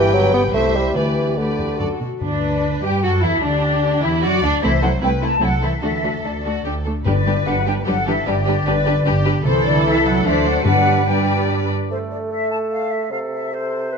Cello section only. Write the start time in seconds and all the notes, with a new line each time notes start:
Already playing: G2
0.54 C2
0.96 D2
1.38 D2
1.59 E2
1.80 F#2
2.00 B2
2.21 D3
2.82 G3
3.03 F#3
3.23 E3
3.42 D3
4.03 E3
4.23 F#3
4.42 D3
4.62 E3
4.83 F#3
5.02 G3
5.23 A3
5.42 F#3
5.63 E3
5.83 E3
6.24 D3
7.06 D3
7.47 F#3
7.67 G3
7.86 F#3
8.07 E3
8.26 D3
9.45 C3
9.64 D3
9.84 E3
10.04 F#3
10.25 E3
10.45 F#3
10.66 F#3
11.08 G3